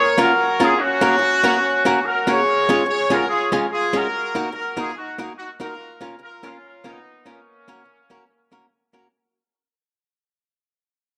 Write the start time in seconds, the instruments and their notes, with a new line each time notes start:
Already playing: horn section A#4 C#5
0.18 hollow-body jazz guitar A#3 C#4 F4 A#4, horn section F#4 A#4
0.60 hollow-body jazz guitar A#3 C#4 F4 A#4, horn section F4 G#4
0.79 horn section C#4 F#4
1.01 hollow-body jazz guitar A#3 C#4 F#4 A#4
1.18 muted hollow-body jazz guitar stroke
1.44 hollow-body jazz guitar A#3 C#4 F#4 A#4
1.85 hollow-body jazz guitar A#3 C#4 F#4 A#4
2.04 horn section F#4 A#4
2.27 hollow-body jazz guitar A#3 C#4 F#4 A#4, horn section G#4 C#5
2.69 hollow-body jazz guitar G#3 C#4 F4 G#4
2.86 horn section G#4 C#5, muted hollow-body jazz guitar stroke
3.10 hollow-body jazz guitar G#3 C#4 F4 G#4, horn section F#4 A#4
3.28 horn section F4 G#4
3.52 hollow-body jazz guitar G#3 C#4 F4 G#4
3.71 horn section F4 G#4
3.93 hollow-body jazz guitar G#3 C#4 F4 G#4, horn section F#4 A#4
4.35 hollow-body jazz guitar A#3 D#4 F#4 A#4
4.52 horn section F#4 A#4, muted hollow-body jazz guitar stroke
4.77 hollow-body jazz guitar A#3 D#4 F#4 A#4, horn section F4 G#4
4.96 horn section D#4 F#4
5.18 hollow-body jazz guitar A#3 D#4 F#4 A#4
5.37 horn section D#4 F#4
5.60 hollow-body jazz guitar A#3 D#4 F#4 A#4, horn section F4 A#4
6.01 hollow-body jazz guitar A#3 C#4 F4 A#4
6.19 horn section F4 A#4, muted hollow-body jazz guitar stroke
6.43 hollow-body jazz guitar A#3 C#4 F4 A#4, horn section C#4 F4
6.84 hollow-body jazz guitar A#3 C#4 F4 A#4, horn section B3 D#4
7.26 hollow-body jazz guitar A#3 C#4 F4 A#4, horn section A#3 C#4
7.68 hollow-body jazz guitar A#3 C#4 F#4 A#4
7.85 muted hollow-body jazz guitar stroke
8.10 hollow-body jazz guitar A#3 C#4 F#4 A#4
8.52 hollow-body jazz guitar A#3 C#4 F#4 A#4
8.93 hollow-body jazz guitar A#3 C#4 F#4 A#4